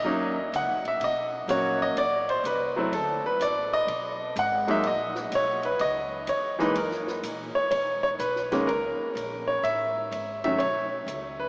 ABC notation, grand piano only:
X:1
M:4/4
L:1/8
Q:"Swing" 1/4=125
K:B
V:1 name="Grand piano"
d2 f e d2 c d | =d =c B2 =A B d ^d- | d2 f e d2 c B | d2 c B A2 z c |
c c B2 A3 c | e3 e c3 B |]
V:2 name="Grand piano"
[F,A,CD] z4 z [F,A,CF]2 | z3 [F,=A,=CE] z4 | z3 [F,G,A,D] z4 | z3 [E,G,A,D] z4 |
z3 [D,G,A,C] z4 | z3 [D,F,=A,C] z4 |]